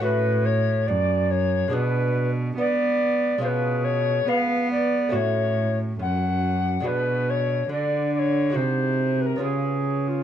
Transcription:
0.00 A2 A3 C#4 F#4 B4
0.45 C#5
0.87 F#2 D5
1.30 C#5
1.68 G#3 D4 G#4
1.73 B2 B4
2.58 B3 D5
3.38 G#3 C#4 F4
3.43 B2 C5
3.47 B4
3.84 C#5
4.28 B3 F5
4.71 D5
5.09 A2 A3 C#4 F#4
5.13 A2 C#5
5.99 F#2 F#5
6.80 G#3 D4 F#4
6.85 B2 B4
7.30 C#5
7.69 D3 D5
8.14 D5
8.19 C#5
8.50 G#3 D#4 F#4
8.54 C3 C5
9.21 B4
9.26 A#4
9.36 B3 C#4 F4
9.41 C#3 G#4
10.08 F4

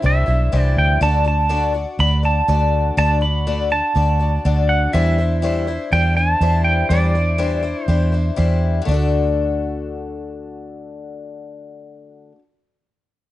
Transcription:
0.02 C2 G3 D4 E4 C5 E5
0.26 B1 G3 D4 E4 C5
0.52 C2 C3 E3 G3 D4 E4 C5
0.61 D5
0.77 D2 G5
1.01 D2 D3 A3 D4 F#4 D5 A5
1.25 D4 F#4 D5 A5
1.49 D3 A3 D4 F#4 D5
1.74 D4 F#4 D5
1.99 D2 A3 D4 F#4 D5 B5
2.23 D4 F#4 D5 A5
2.48 D2 D3 A3 D4 F#4 D5
2.97 D2 D3 A3 D4 F#4 D5 A5
3.21 D4 F#4 D5 B5
3.47 D3 A3 D4 F#4 D5
3.70 D4 F#4 D5 A5
3.95 D2 A3 D4 F#4 D5
4.19 D4 F#4 D5
4.45 D2 D3 A3 D4 F#4 D5
4.69 F#5
4.93 E2 E3 G3 D4 E4 C5 E5
5.18 D4 E4 C5
5.42 E3 G3 D4 E4 C5
5.67 D4 E4 C5
5.92 E2 G3 D4 E4 C5 G5
6.16 D4 E4 C5 A5
6.41 E2 E3 G3 D4 E4 C5
6.64 G5
6.89 E2 E3 G3 D4 E4 C5 D5
7.14 D4 E4 C5
7.38 E3 G3 D4 E4 C5
7.63 D4 E4 C5
7.85 E2 G3 D4 E4 C5
7.89 C5
8.12 D4 E4 C5
8.36 E2 E3 G3 D4 E4 C5
8.82 D3 A3
8.87 D2 D4
8.92 F#4 A4

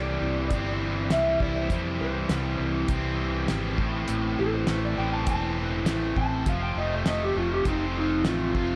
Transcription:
Already playing: C2 C3 E3 G3 C4 E4 G4 C5 D5 E5
0.21 C2 E3
0.50 G1 C3 E3 G3 C4 E4, kick, closed hi-hat
0.82 E3
1.10 C2 G3 E5, snare, closed hi-hat
1.40 C2 E4 D5, kick
1.56 C5
1.70 F2 C3 E3 G3 C4 E4 G4 C5 E5, kick, closed hi-hat
2.01 C2 E3 C5
2.29 C2 G3, snare, closed hi-hat
2.59 C2 E3
2.88 C2 C3 E3 G3 C4 E4, kick, closed hi-hat
3.20 E3
3.48 G#1 G3, snare, closed hi-hat
3.78 A1 A2 E3 A3 C4 E4 A4 C5, kick
4.08 A1 A2, closed hi-hat
4.39 A1 E3 A4
4.53 C5
4.67 A1 A3, snare, closed hi-hat
4.85 D5
4.97 A1 A2 E3 A3 C4 E4 G5
5.13 A5
5.27 E1 C4 A5, kick, closed hi-hat
5.58 E3
5.86 A1 A3, snare, closed hi-hat
6.16 A1 E4 A5, kick
6.46 F1 F2 C3 F3 A3 C4 F4 A4 C5 F5, kick, closed hi-hat
6.63 G5
6.76 F1 A3 D#5
6.93 C5
7.06 F1 A3 D#5, snare, closed hi-hat
7.23 G4
7.36 F1 F3 F4
7.53 G4
7.65 F1 F2 C3 F3 A3 C4 D#4 F4, kick, closed hi-hat
7.96 F3 D#4
8.25 A1 A3 F4, snare, closed hi-hat
8.55 F1 F4, kick

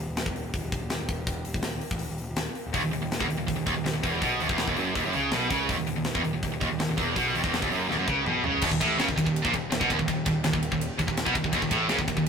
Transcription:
0.09 D#1
0.17 snare, open hi-hat
0.26 E1, kick
0.36 D#1, open hi-hat
0.45 D#1
0.54 D#1, kick, open hi-hat
0.64 D#1
0.72 D#1, kick, open hi-hat
0.82 D#1
0.90 D#1, snare, open hi-hat
1.00 D#1
1.09 E1, kick, open hi-hat
1.27 kick, open hi-hat
1.45 D#1, open hi-hat
1.54 D#1, kick
1.62 D#1, snare, open hi-hat
1.73 D#1
1.81 muted picked electric bass stroke, open hi-hat
1.91 A1, kick
1.99 D#1, open hi-hat
2.11 D#1
2.18 D#1, open hi-hat
2.29 D#1
2.36 D#1, snare, open hi-hat
2.55 open hi-hat
2.66 D#1
2.73 D#1 D#2, kick, open hi-hat
2.84 D#1 D#2
2.93 D#1 D#2, open hi-hat
3.02 D#1 D#2
3.12 snare, open hi-hat
3.19 E1 E2, kick
3.29 D#1 D#2, open hi-hat
3.38 D#1 D#2
3.47 D#1 D#2, kick, open hi-hat
3.56 D#1 D#2
3.66 D#1 D#2, kick, open hi-hat
3.75 D#1 D#2
3.84 D#1 D#2, snare, open hi-hat
3.94 D#1 D#2
4.03 E1 E2, kick, open hi-hat
4.21 B1 B2, kick, open hi-hat
4.40 D#1 D#2, open hi-hat
4.49 E1 E2, kick
4.58 snare, open hi-hat
4.68 D#1 D#2, kick
4.76 F#1 F#2, open hi-hat
4.95 D#1 D#2, kick, open hi-hat
5.04 F#1 F#2
5.13 C#2 C#3, open hi-hat
5.31 B1 B2, snare, open hi-hat
5.49 C#2 C#3, kick, open hi-hat
5.69 D#1 D#2, kick, open hi-hat
5.77 D#1 D#2
5.87 D#1 D#2, open hi-hat
5.96 D#1 D#2
6.04 snare, open hi-hat
6.15 E1 E2, kick
6.24 D#1 D#2, open hi-hat
6.34 D#1 D#2
6.43 D#1 D#2, kick, open hi-hat
6.52 D#1 D#2
6.61 D#1 D#2, kick, open hi-hat
6.71 D#1 D#2
6.80 D#1 D#2, snare, open hi-hat
6.89 D#1 D#2
6.98 E1 E2, kick, open hi-hat
7.16 B1 B2, kick, open hi-hat
7.35 D#1 D#2, open hi-hat
7.44 E1 E2, kick
7.54 snare, open hi-hat
7.62 D#1 D#2, kick
7.72 F#1 F#2, open hi-hat
7.89 D#1 D#2, snare
7.98 F#1 F#2
8.08 C#2 C#3, kick
8.26 B1 B2, mid tom
8.44 C#2 C#3, floor tom
8.62 D#1 D#2, kick, crash
8.71 D#1 D#2, kick
8.81 A1 A2, kick, ride
8.99 C#2 C#3, snare, ride
9.08 D#1 D#2, kick
9.18 D#1 D#2, kick, ride
9.27 D#1 D#2, kick
9.36 ride
9.45 A#1 A#2, kick
9.54 D#1 D#2, kick, ride
9.72 D#1 D#2, snare, ride
9.80 B1 B2, kick
9.89 D#1 D#2, kick, ride
9.98 D#1 D#2, kick
10.08 D#1 D#2, kick, ride
10.26 D#1 D#2, kick, ride
10.44 D#1 D#2, snare, ride
10.53 D#1 D#2, kick
10.63 ride
10.71 D#1 D#2, kick
10.81 ride
10.98 D#1 D#2, kick, ride
11.07 D#1 D#2, kick
11.17 snare, ride
11.25 B1 B2, kick
11.35 D#1 D#2, kick, ride
11.43 D#1 D#2, kick
11.52 D#1 D#2, kick, ride
11.62 D#1 D#2, kick
11.71 A1 A2, kick, ride
11.89 C#2 C#3, snare, ride
11.99 D#1 D#2, kick
12.08 D#1 D#2, kick, ride
12.16 D#1 D#2, kick

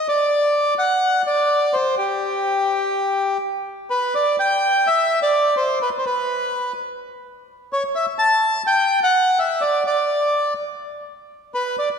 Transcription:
0.08 D5
0.79 F#5
1.27 D5
1.73 C5
1.98 G4
3.90 B4
4.15 D5
4.39 G5
4.87 E5
5.22 D5
5.57 C5
5.82 B4
5.98 C5
6.06 B4
7.73 C#5
7.95 E5
8.19 A5
8.67 G5
9.04 F#5
9.39 E5
9.61 D5
9.87 D5
11.54 B4
11.79 D5

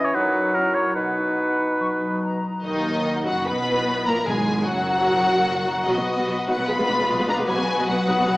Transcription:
Already playing: E2 E3 C#4 E4 C#5 G#5
0.05 C#5
0.14 F#2 F#3 D#4 B4 F#5
0.33 F#4 B4
0.54 F#2 E4 A#4
0.74 F#4 C#5
0.95 B2 D#4 B4
1.17 D#4
1.37 B4 F#5
1.59 D#4
1.79 F#3 C#6
2.00 D#4
2.11 B5
2.22 B4 A#5
2.43 D#4
2.64 D#2 B2 D#3 D#4 D#5
2.75 D#4
2.85 F#4
2.95 B4
3.05 D#5
3.15 F#5
3.25 F#1 F#2 F#3 F#4 F#5 B5
3.37 F#5
3.46 B1 B2 B3 B4 B5
3.57 C#4
3.68 E4
3.77 B4
3.87 C#5
3.96 E5
4.07 A#1 A#2 A#3 A#4 A#5 B5
4.17 E5
4.26 G#1 G#2 B2 G#3 G#4 G#5
4.36 C#4
4.47 F#4
4.56 A#4
4.66 F#1 F#2 F#3 F#4 C#5 F#5
4.77 F#5
4.87 A#5
4.97 F#5
5.07 B2
5.18 C#4
5.28 F#4
5.38 A#4
5.48 C#5
5.58 F#5
5.67 A#5
5.77 F#5
5.86 B1 B2 F#3 F#4 B4 D#5
5.97 B2 F#3 B3
6.07 F#4
6.17 B2 F#3 B3 B4
6.27 B1 B2 F#3 F#4
6.38 F#5
6.47 B1 B2 F#3 D#4 F#5 B5
6.58 B2 F#3 B3 F#5
6.68 B1 B2 G#3 F4 B5
6.78 B2 G#3 B3
6.89 B1 B2 G#3 D4 F4
6.99 B2 G#3 B3 D5
7.09 B1 B2 G#3 G#4
7.19 B2 G#3 B3 F5
7.28 B1 B2 G#3 D4 A#5 D6
7.38 B2 G#3 B3 F5
7.47 B1 B2 F#3 F#4 G#5
7.57 B2 F#3 B3
7.68 F#4
7.78 B2 F#3 B3 D#5
7.87 B1 B2 F#3 F#4 F#5
7.97 F#5
8.07 B1 B2 F#3 D#4 D#6
8.17 B2 F#3 B3 F#5
8.27 B1 B2 F#3 B3

